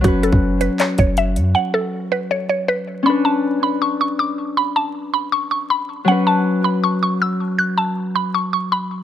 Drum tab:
HH |x-x---x-x-x-x-x-|----------------|----------------|----------------|
CP |--------x-------|----------------|----------------|----------------|
BD |o--o------o-----|----------------|----------------|----------------|

HH |----------------|----------------|
CP |----------------|----------------|
BD |----------------|----------------|